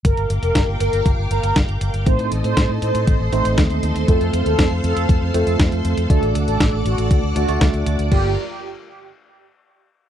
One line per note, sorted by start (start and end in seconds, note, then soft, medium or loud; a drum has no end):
0.05 0.14 G1 loud
0.05 2.05 A#4 medium
0.05 0.31 A#4 loud
0.05 2.05 F5 medium
0.05 2.05 G5 medium
0.05 2.05 D6 medium
0.05 kick loud
0.05 closed hi-hat medium
0.17 0.27 G1 medium
0.17 closed hi-hat soft
0.30 0.39 G1 medium
0.30 closed hi-hat medium
0.43 0.52 F1 medium
0.43 0.69 A#4 medium
0.43 closed hi-hat medium
0.55 0.65 G1 loud
0.55 kick loud
0.55 snare loud
0.55 closed hi-hat medium
0.68 0.77 G1 medium
0.80 0.90 G1 medium
0.80 1.15 A#4 medium
0.80 closed hi-hat medium
0.93 1.02 G1 medium
0.93 closed hi-hat medium
1.06 1.15 G1 loud
1.06 kick loud
1.06 closed hi-hat medium
1.18 1.28 G1 medium
1.31 1.40 G1 medium
1.31 1.57 A#4 medium
1.31 closed hi-hat medium
1.43 1.53 G1 medium
1.43 closed hi-hat medium
1.56 1.65 G1 loud
1.56 kick loud
1.56 snare loud
1.56 closed hi-hat medium
1.69 1.78 G1 medium
1.69 closed hi-hat soft
1.81 1.91 G1 medium
1.81 closed hi-hat medium
1.94 2.03 G1 medium
1.94 closed hi-hat medium
2.06 2.16 A1 loud
2.06 3.30 A3 medium
2.06 3.30 C4 medium
2.06 3.30 D#4 medium
2.06 8.08 A4 medium
2.06 3.30 C5 medium
2.06 2.33 C5 loud
2.06 6.06 C5 medium
2.06 4.06 D#5 medium
2.06 6.06 C6 medium
2.06 kick loud
2.06 closed hi-hat medium
2.19 2.28 A2 medium
2.19 closed hi-hat soft
2.32 2.41 A1 medium
2.32 closed hi-hat medium
2.44 2.54 A2 medium
2.44 2.71 C5 medium
2.44 closed hi-hat medium
2.57 2.66 A2 loud
2.57 kick loud
2.57 snare loud
2.57 closed hi-hat medium
2.69 2.79 A2 medium
2.82 2.91 A2 medium
2.82 3.17 C5 loud
2.82 closed hi-hat medium
2.95 3.04 A2 medium
2.95 closed hi-hat medium
3.07 3.17 A1 loud
3.07 kick loud
3.07 closed hi-hat medium
3.20 3.29 A1 medium
3.32 3.42 A1 medium
3.32 4.05 A3 medium
3.32 4.05 C4 medium
3.32 4.05 D#4 medium
3.32 4.05 C5 loud
3.32 3.59 C5 loud
3.32 closed hi-hat medium
3.45 3.54 A1 medium
3.45 closed hi-hat medium
3.58 3.67 D#2 loud
3.58 kick loud
3.58 snare loud
3.58 closed hi-hat medium
3.70 3.80 D#2 medium
3.70 closed hi-hat soft
3.83 3.92 D#2 medium
3.83 closed hi-hat medium
3.95 4.05 D#2 medium
3.95 closed hi-hat medium
4.08 4.18 F2 loud
4.08 5.31 A3 medium
4.08 5.31 C4 medium
4.08 5.31 F4 medium
4.08 4.34 A4 loud
4.08 5.31 C5 medium
4.08 6.08 F5 medium
4.08 kick loud
4.08 closed hi-hat medium
4.21 4.30 F2 medium
4.21 closed hi-hat soft
4.33 4.43 F2 medium
4.33 closed hi-hat medium
4.46 4.55 D#2 medium
4.46 4.72 A4 medium
4.46 closed hi-hat medium
4.59 4.68 F2 loud
4.59 kick loud
4.59 snare loud
4.59 closed hi-hat medium
4.71 4.81 F2 medium
4.84 4.93 F2 medium
4.84 5.19 A4 loud
4.84 closed hi-hat medium
4.96 5.06 F2 medium
4.96 closed hi-hat medium
5.09 5.18 F2 loud
5.09 kick loud
5.09 closed hi-hat medium
5.22 5.31 F2 medium
5.34 5.44 F2 medium
5.34 6.07 A3 medium
5.34 6.07 C4 medium
5.34 6.07 F4 medium
5.34 5.60 A4 loud
5.34 6.07 C5 loud
5.34 closed hi-hat medium
5.47 5.56 F2 medium
5.47 closed hi-hat medium
5.60 5.69 F2 loud
5.60 kick loud
5.60 snare loud
5.60 closed hi-hat medium
5.72 5.81 F2 medium
5.72 closed hi-hat soft
5.85 5.94 F2 medium
5.85 closed hi-hat medium
5.97 6.07 F2 medium
5.97 closed hi-hat medium
6.10 6.19 D2 loud
6.10 7.33 A3 medium
6.10 7.33 D4 medium
6.10 7.33 F#4 medium
6.10 6.36 A4 loud
6.10 7.33 D5 medium
6.10 8.10 D5 medium
6.10 8.10 F#5 medium
6.10 8.10 D6 medium
6.10 kick loud
6.10 closed hi-hat medium
6.22 6.32 A1 medium
6.22 closed hi-hat soft
6.35 6.44 D2 medium
6.35 closed hi-hat medium
6.48 6.57 A1 medium
6.48 6.74 A4 loud
6.48 closed hi-hat medium
6.60 6.70 A1 loud
6.60 kick loud
6.60 snare loud
6.60 closed hi-hat medium
6.73 6.82 A1 medium
6.85 6.95 A1 medium
6.85 7.20 F#4 loud
6.85 closed hi-hat medium
6.98 7.07 A1 medium
6.98 closed hi-hat medium
7.11 7.20 D2 loud
7.11 kick loud
7.11 closed hi-hat medium
7.23 7.33 D2 medium
7.36 7.45 D2 medium
7.36 7.46 A3 medium
7.36 7.46 D4 medium
7.36 7.62 F#4 loud
7.36 7.46 F#4 medium
7.36 7.46 D5 loud
7.36 closed hi-hat medium
7.48 7.58 D2 medium
7.48 8.09 A3 loud
7.48 8.09 D4 medium
7.48 8.09 F#4 medium
7.48 8.09 D5 loud
7.48 closed hi-hat medium
7.61 7.71 D2 loud
7.61 kick loud
7.61 snare loud
7.61 closed hi-hat medium
7.74 7.83 D2 medium
7.74 closed hi-hat soft
7.86 7.96 D2 medium
7.86 closed hi-hat medium
7.99 8.08 D2 medium
7.99 closed hi-hat medium
8.12 8.35 G1 loud
8.12 8.30 A#3 medium
8.12 8.35 F4 medium
8.12 8.30 F4 medium
8.12 8.30 G4 medium
8.12 8.35 G4 medium
8.12 8.35 A#4 medium
8.12 8.30 D5 medium
8.12 8.35 D5 medium
8.12 8.35 G5 medium
8.12 kick loud
8.12 crash medium